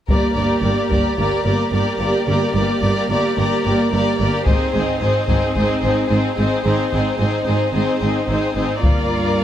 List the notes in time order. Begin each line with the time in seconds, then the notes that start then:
0.08 G1 G2 A#3 G4 A#4 D5, taiko
0.35 G1 G2 A#3 G4 A#4 D5
0.62 G1 G2 A#3 G4 A#4 D5
0.90 G1 G2 A#3 G4 A#4 D5, taiko
1.17 G1 G2 A#3 G4 A#4 D5
1.45 G1 G2 A#3 G4 A#4 D5
1.72 G1 G2 A#3 G4 A#4 D5
1.99 G1 G2 A#3 G4 A#4 D5
2.27 G1 G2 A#3 G4 A#4 D5
2.54 G1 G2 A#3 G4 A#4 D5
2.82 G1 G2 A#3 G4 A#4 D5
3.10 G1 G2 A#3 G4 A#4 D5
3.37 G1 G2 A#3 G4 A#4 D5
3.64 G1 G2 A#3 G4 A#4 D5
3.92 G1 G2 A#3 G4 A#4 D5
4.19 G1 G2 A#3 G4 A#4 D5
4.45 G#1 G#2 C4 D#4 G#4 C5, taiko
4.72 G#1 G#2 C4 D#4 G#4 C5
4.99 G#1 G#2 C4 D#4 G#4 C5
5.28 G#1 G#2 C4 D#4 G#4 C5, taiko
5.54 G#1 G#2 C4 G#4 C5
5.59 D#4
5.81 G#1 G#2 C4 D#4 G#4 C5
6.08 G#1 G#2 C4 D#4 G#4 C5
6.36 G#1 G#2 C4 D#4 G#4 C5
6.64 G#1 G#2 C4 D#4 G#4 C5
6.92 G#1 G#2 C4 D#4 G#4 C5
7.17 G#1 G#2 C4 D#4 G#4 C5
7.45 G#1 G#2 C4 D#4 G#4 C5
7.74 G#1 G#2 C4 D#4 G#4 C5
7.99 G#1 G#2 C4 D#4 G#4 C5
8.28 G#1 G#2 C4 D#4 G#4 C5
8.56 G#1 G#2 C4 D#4 G#4 C5
8.83 G1 G2 A#3 F4 A#4 D5, taiko